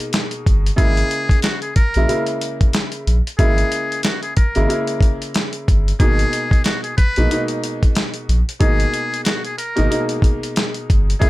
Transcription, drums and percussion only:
0.00 closed hi-hat
0.13 snare, closed hi-hat
0.31 closed hi-hat
0.46 kick, closed hi-hat
0.66 closed hi-hat
0.78 kick, closed hi-hat
0.97 closed hi-hat
1.11 closed hi-hat
1.29 kick, closed hi-hat
1.42 snare, closed hi-hat
1.62 closed hi-hat
1.76 kick, closed hi-hat
1.94 closed hi-hat
2.09 closed hi-hat
2.27 closed hi-hat
2.41 closed hi-hat
2.61 kick, closed hi-hat
2.73 snare, closed hi-hat
2.92 closed hi-hat
3.07 closed hi-hat
3.27 closed hi-hat
3.39 kick, closed hi-hat
3.58 closed hi-hat
3.72 closed hi-hat
3.92 closed hi-hat
4.03 snare, closed hi-hat
4.23 closed hi-hat
4.37 kick, closed hi-hat
4.55 closed hi-hat
4.70 closed hi-hat
4.87 closed hi-hat
5.01 kick, closed hi-hat
5.22 closed hi-hat
5.34 snare, closed hi-hat
5.53 closed hi-hat
5.68 kick, closed hi-hat
5.88 closed hi-hat
6.00 kick, closed hi-hat
6.19 closed hi-hat
6.33 closed hi-hat
6.51 kick, closed hi-hat
6.64 snare, closed hi-hat
6.84 closed hi-hat
6.98 kick, closed hi-hat
7.16 closed hi-hat
7.31 closed hi-hat
7.48 closed hi-hat
7.64 closed hi-hat
7.83 kick, closed hi-hat
7.95 snare, closed hi-hat
8.14 closed hi-hat
8.29 closed hi-hat
8.49 closed hi-hat
8.61 kick, closed hi-hat
8.80 closed hi-hat
8.94 closed hi-hat
9.14 closed hi-hat
9.25 snare, closed hi-hat
9.45 closed hi-hat
9.58 closed hi-hat
9.77 closed hi-hat
9.92 closed hi-hat
10.09 closed hi-hat
10.22 kick, closed hi-hat
10.43 closed hi-hat
10.56 snare, closed hi-hat
10.74 closed hi-hat
10.90 kick, closed hi-hat
11.10 closed hi-hat
11.22 kick, closed hi-hat

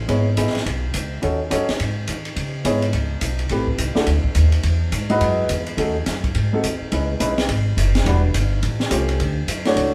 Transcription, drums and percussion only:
0.09 ride
0.37 hi-hat pedal, ride
0.47 snare
0.55 snare, ride
0.66 ride
0.94 hi-hat pedal, ride
1.23 ride
1.51 hi-hat pedal, ride
1.69 snare, ride
1.80 ride
2.08 hi-hat pedal, ride
2.25 ride
2.36 ride
2.65 hi-hat pedal, ride
2.82 ride
2.93 ride
3.21 hi-hat pedal, ride
3.39 ride
3.49 ride
3.67 kick
3.78 hi-hat pedal, ride
3.95 snare
4.07 ride
4.24 kick
4.35 hi-hat pedal, ride
4.52 ride
4.63 ride
4.92 hi-hat pedal, ride
5.10 ride
5.21 ride
5.49 hi-hat pedal, ride
5.67 ride
5.78 ride
6.06 snare, hi-hat pedal, ride
6.24 kick, ride
6.35 ride
6.64 hi-hat pedal, ride
6.92 ride
7.20 hi-hat pedal, ride
7.38 snare, ride
7.49 ride
7.78 hi-hat pedal, ride
7.95 snare, ride
8.06 ride
8.34 hi-hat pedal, ride
8.63 ride
8.80 snare
8.91 hi-hat pedal, ride
9.09 ride
9.20 ride
9.48 hi-hat pedal, ride
9.65 snare, ride
9.77 ride

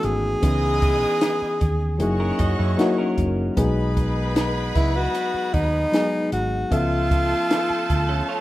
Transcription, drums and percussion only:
0.03 closed hi-hat
0.43 kick, closed hi-hat
0.82 kick, closed hi-hat
1.21 snare, closed hi-hat
1.61 kick, closed hi-hat
2.00 closed hi-hat
2.39 kick, closed hi-hat
2.79 snare, closed hi-hat
3.18 kick, closed hi-hat
3.57 kick, closed hi-hat
3.97 kick, closed hi-hat
4.36 snare, closed hi-hat
4.75 kick, closed hi-hat
5.15 snare, closed hi-hat
5.54 kick, closed hi-hat
5.93 snare, closed hi-hat
6.32 closed hi-hat
6.72 kick, closed hi-hat
7.11 kick, closed hi-hat
7.51 snare, closed hi-hat
7.90 kick, closed hi-hat

